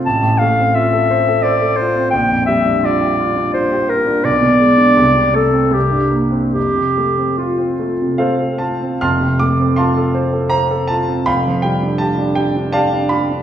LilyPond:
<<
  \new Staff \with { instrumentName = "Clarinet" } { \time 3/4 \key f \major \tempo 4 = 81 a''8 f''8 e''4 d''8 c''8 | g''8 e''8 d''4 c''8 bes'8 | d''4. a'8 g'8 r8 | g'4 f'4. r8 |
r2. | r2. | }
  \new Staff \with { instrumentName = "Grand piano" } { \time 3/4 \key f \major << { r2. | r2. | r2. | r2 <a' c'' f''>8 a''8 |
<a'' c''' f'''>8 d'''8 <f'' a'' c'''>4 bes''8 a''8 | <f'' g'' b''>8 g''8 a''8 g''8 <d'' f'' a''>8 b''8 | } \\ { a,,16 a,16 a16 c'16 f'16 a'16 c''16 a'16 c''16 a'16 f'16 c'16 | bes,,16 f,16 g16 d'16 f'16 g'16 f'16 d'16 f'16 g'16 f'16 d'16 | b,,16 b,16 gis16 d'16 c,16 c16 a16 c'16 c,16 g,16 bes16 c'16 | f,16 c16 a16 c'16 f'16 c'16 a16 c16 a16 c'16 f'16 c'16 |
<f,, f,>16 c16 a16 c'16 f'16 a'16 c''16 a'16 c''16 a'16 f'16 c'16 | <f,, f,>16 f16 g16 d'16 g'16 d'16 g'16 d'16 g'16 d'16 g'16 d'16 | } >> }
>>